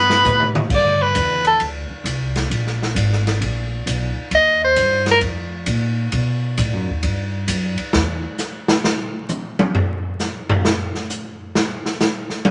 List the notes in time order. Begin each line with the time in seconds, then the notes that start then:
Already playing: G2 B3 B4
0.10 snare
0.25 A2, hi-hat pedal, mid tom
0.40 mid tom
0.55 mid tom
0.69 G2, kick, crash
0.75 D5
1.02 B4
1.15 E2, hi-hat pedal, ride
1.45 A4, ride
1.60 D2, ride
1.90 muted upright bass stroke
2.04 C2, hi-hat pedal, ride
2.36 snare, ride
2.50 A#1, ride
2.67 snare
2.82 snare
2.95 G#1, hi-hat pedal, ride
3.13 snare
3.27 snare, ride
3.41 A#1, ride
3.86 B1, hi-hat pedal, ride
4.16 muted upright bass stroke
4.31 D#2 D#5, ride
4.64 C5
4.76 G2, hi-hat pedal, ride
5.06 snare, ride
5.11 A#4
5.21 F2, ride
5.66 A#2, hi-hat pedal, ride
6.12 B2, ride
6.57 A2, hi-hat pedal, ride
6.73 F#2
6.88 D#2
7.03 G2, ride
7.48 F#2, hi-hat pedal, ride
7.78 muted upright bass stroke, ride
7.93 E2, snare
8.38 snare, hi-hat pedal
8.68 snare
8.84 snare
9.29 hi-hat pedal, high tom
9.59 high tom
9.75 floor tom
10.19 snare, hi-hat pedal
10.49 floor tom
10.65 snare
10.95 snare
11.10 hi-hat pedal
11.55 snare
11.86 snare
12.00 snare, hi-hat pedal
12.30 snare
12.45 high tom